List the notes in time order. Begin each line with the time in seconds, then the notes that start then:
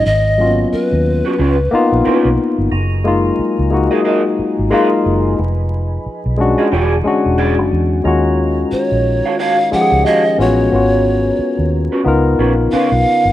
0.06 G#1 D#5
0.38 F#3 A#3 C#4 F4
0.45 B3
0.73 B4, muted fingered electric bass stroke
0.93 D#2
1.25 C#4 F#4 B4
1.39 C#2 C#4 F4 B4
1.71 A#3 B3 D#4 F4, muted fingered electric bass stroke
1.92 A#1
2.05 C#4 F4 B4
2.25 B1
2.58 G1
2.72 F#1 F#3 D#4 G#4 A#4
3.04 G#3 A#3 D#4 F4
3.39 muted fingered electric bass stroke
3.59 C#2
3.70 G#3 A#3 D#4 F#4
3.91 G#4 A#4 D#5
4.04 G#4 A#4 D#5
4.39 muted fingered electric bass stroke
4.59 G#1
4.70 G#3 A#3 D#4 F4 G#4 A#4 D#5
5.06 F#1
5.38 F1 F3 G#4 B4
6.06 muted fingered electric bass stroke
6.26 B1
6.38 G#3 C#4 D4 F#4
6.58 F4 G#4 D#5
6.72 E1 D3 E3 F#4 G#4 D5
7.04 G#3 C#4 D4 F#4, muted fingered electric bass stroke
7.26 E1
7.38 F#4 G#4 D5
7.58 F#1
7.73 E2
8.04 D#2 D#3 G#3 C#4 D#4 F4 F#4 A#4
8.72 C#5, muted fingered electric bass stroke
8.92 A#1
9.25 F#4 C#5 F5
9.39 F#4 C#5 F5
9.71 F3 G#3 C#4 G4 F#5, muted fingered electric bass stroke
9.81 G#4
9.92 C#2
10.06 F#4 C#5 D#5 F5
10.38 A1 B3 C#4 F4 C#5
10.42 F#4
10.71 G#1 G#3 B3 C#4 F4
10.75 F#4
11.39 muted fingered electric bass stroke
11.59 D#2
11.92 C#4 F#4 B4
12.04 C#2 C#3 B3 D#4 F4 A#4
12.39 A#1 C#4 F4 B4
12.72 C#4 F4 B4 F5, muted fingered electric bass stroke
12.92 B1
13.25 G1